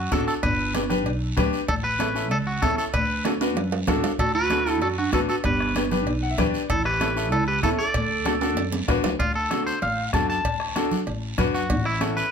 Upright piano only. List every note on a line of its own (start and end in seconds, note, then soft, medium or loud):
0.11 0.34 D4 medium
0.11 0.34 F#4 medium
0.11 0.34 A4 medium
0.74 0.80 D4 medium
0.74 0.80 G4 medium
0.74 0.80 B4 medium
0.90 1.06 D4 medium
0.90 1.06 G4 medium
0.90 1.07 B4 medium
1.37 1.59 D4 medium
1.37 1.59 G4 medium
1.37 1.59 B4 loud
1.99 2.05 C#4 medium
1.99 2.05 E4 medium
1.99 2.05 A4 medium
2.15 2.32 C#4 medium
2.15 2.32 E4 medium
2.15 2.32 A4 medium
2.62 2.84 C#4 medium
2.62 2.84 E4 medium
2.62 2.85 A4 medium
3.25 3.30 D4 medium
3.25 3.31 F#4 medium
3.25 3.31 A4 medium
3.41 3.57 D4 medium
3.41 3.57 F#4 medium
3.41 3.58 B4 medium
3.88 4.10 D4 medium
3.88 4.10 F#4 medium
3.88 4.10 A4 loud
4.51 4.56 D4 medium
4.51 4.56 F#4 medium
4.51 4.56 A4 medium
4.66 4.82 D4 medium
4.66 4.83 F#4 medium
4.66 4.83 A4 medium
5.13 5.35 D4 medium
5.13 5.35 F#4 medium
5.13 5.35 B4 medium
5.75 5.81 D4 medium
5.75 5.81 G4 medium
5.75 5.81 B4 medium
5.91 6.07 D4 medium
5.91 6.08 G4 medium
5.91 6.08 B4 medium
6.23 6.30 F#5 medium
6.31 6.38 E5 medium
6.38 6.60 D4 medium
6.38 6.60 G4 medium
6.38 6.60 B4 medium
6.38 6.67 D5 medium
7.00 7.06 C#4 medium
7.00 7.06 E4 medium
7.00 7.06 A4 medium
7.16 7.33 C#4 medium
7.16 7.33 E4 medium
7.16 7.33 A4 medium
7.63 7.85 C#4 medium
7.63 7.85 E4 medium
7.63 7.85 A4 medium
8.25 8.31 D4 medium
8.25 8.31 F#4 medium
8.25 8.31 A4 loud
8.41 8.58 D4 medium
8.41 8.58 F#4 medium
8.41 8.58 A4 medium
8.88 9.10 D4 medium
8.88 9.10 F#4 medium
8.88 9.11 B4 loud
9.50 9.73 D4 medium
9.50 9.73 F#4 medium
9.50 9.73 A4 medium
10.13 10.35 D4 medium
10.13 10.35 F#4 medium
10.13 10.36 A4 medium
10.76 10.98 D4 medium
10.76 10.98 F#4 medium
10.76 10.98 A4 medium
11.38 11.60 D4 medium
11.38 11.60 F#4 medium
11.38 11.61 B4 loud
12.01 12.23 C#4 medium
12.01 12.23 E4 medium
12.01 12.23 A4 medium